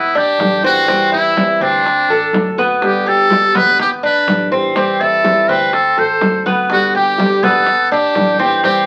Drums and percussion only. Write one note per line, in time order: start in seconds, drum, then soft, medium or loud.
0.15 high bongo soft
0.15 high conga soft
0.40 high bongo medium
0.40 low bongo medium
0.40 high conga medium
0.65 high conga soft
0.88 high bongo medium
0.88 high conga soft
1.13 high bongo soft
1.13 high conga soft
1.37 high bongo medium
1.37 high conga loud
1.86 high bongo medium
1.86 high conga soft
2.09 high bongo soft
2.09 high conga soft
2.33 high bongo medium
2.33 low bongo medium
2.33 high conga medium
2.59 high bongo soft
2.82 high bongo medium
2.82 high conga soft
3.06 high bongo soft
3.06 high conga soft
3.30 high bongo medium
3.30 high conga loud
3.55 high bongo soft
3.55 high conga loud
3.55 low conga medium
3.79 high bongo medium
3.79 high conga soft
3.79 low conga medium
4.03 high bongo soft
4.03 high conga soft
4.28 high bongo medium
4.28 low bongo medium
4.28 high conga medium
4.76 high bongo medium
4.76 high conga soft
5.00 high bongo soft
5.00 high conga soft
5.24 high bongo medium
5.24 high conga loud
5.73 high bongo medium
5.73 high conga soft
5.97 high bongo soft
5.97 high conga soft
6.21 high bongo medium
6.21 low bongo medium
6.21 high conga medium
6.46 high bongo soft
6.46 high conga medium
6.70 high bongo medium
6.94 high bongo soft
6.94 high conga soft
7.18 high bongo medium
7.18 high conga loud
7.43 high bongo soft
7.43 high conga medium
7.43 low conga medium
7.67 high bongo medium
7.67 high conga soft
7.91 high bongo soft
7.91 high conga soft
8.15 high bongo medium
8.15 low bongo medium
8.15 high conga medium
8.64 high bongo medium
8.64 high conga soft